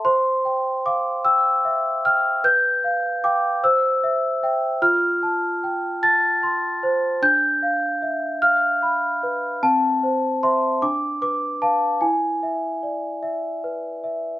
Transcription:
0.05 C5 C6
0.45 G5
0.86 F5 D6
1.25 G5 E6
1.65 E5
2.05 G5 F6
2.44 B4 G6
2.84 F5
3.24 F5 G5 D6
3.64 C5 E6
4.04 E5
4.43 E5 G5
4.82 F4 F6
5.23 A5
5.63 G5
6.03 A5 A6
6.43 C6
6.83 C5
7.22 D4 G6
7.63 F5
8.02 E5
8.42 F5 F6
8.83 B5
9.23 B4
9.63 C4 A5
10.03 C5
10.43 C5 E5 C6
10.82 D4 D6
11.22 B4 D6
11.62 B4 F5 A5
12.01 E4 G#5
12.43 E5
12.83 D5
13.23 E5
13.64 B4
14.04 E5

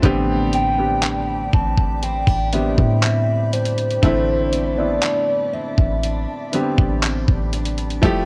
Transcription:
Already playing: F3 A3 C4
0.02 A1 A2 D3 B3 C4 D4 G4 D5 G5 B5, kick, closed hi-hat
0.53 C4 G5, closed hi-hat
0.77 D3 B3 C4 G4
1.03 D4, clap, closed hi-hat
1.53 A1 C4 A5, kick
1.78 kick
2.03 C4 G5, closed hi-hat
2.27 A1 D4, kick
2.52 D3 G3 B3 C4 G4 E5, closed hi-hat
2.78 A2, kick
3.03 C4 E5, clap, closed hi-hat
3.53 D4 C5, closed hi-hat
3.65 closed hi-hat
3.78 closed hi-hat
3.91 closed hi-hat
4.02 A1 A2 D3 A3 C4 E4 A5, kick, closed hi-hat
4.53 C4, closed hi-hat
4.77 D3 B3 C4 E4 D5
5.03 D4, clap, closed hi-hat
5.53 C4 E5
5.78 A1, kick
6.03 D4, closed hi-hat
6.52 D3 G3 B3 C4 G4, closed hi-hat
6.78 A1, kick
7.03 C4, clap, closed hi-hat
7.28 A1, kick
7.53 D4, closed hi-hat
7.65 closed hi-hat
7.78 closed hi-hat
7.90 closed hi-hat
8.02 F1 F3 A3 E4 G4 E5 G5, kick, closed hi-hat

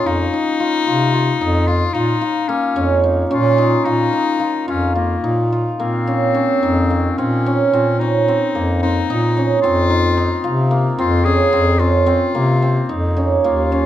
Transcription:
Already playing: A#3 C#4 D#4
0.04 F2 D#4 F4
0.33 D#4
0.60 F4
0.86 C3 F4
1.14 F4
1.40 F2 D#4
1.67 F4
1.93 A#2 D#4 F4
2.21 F4
2.49 A#3 C#4
2.76 F2 C#4
3.04 D#4
3.31 A#2 C#4 F4
3.58 D#4
3.85 A#2 D#4 F4
4.13 D#4
4.40 F4
4.68 F2 C#4 F4
4.95 A#3 F4
5.24 A#2 D#4
5.52 F4
5.79 A#2 A#3 C4
6.07 C#4
6.34 C#4
6.62 F2 D#4
6.90 A#3
7.18 A#2 C4 C#4
7.46 C#4
7.72 A#2 C4
8.00 C#4 D#4
8.28 C4
8.55 F2 A#3
8.82 C4 D#4
9.09 A#2 D#4
9.37 C#4
9.62 F2 C4 F4
9.90 D#4
10.17 D#4
10.44 C3 F4
10.71 A#3
10.98 F2 C4 F4
11.25 C#4 G#4
11.53 F2 C4
11.79 C#4 F4
12.06 C4
12.35 C3 A#3
12.62 C4
12.89 F2 D#4
13.17 C#4
13.44 D#2 A#3 F4
13.72 C#4

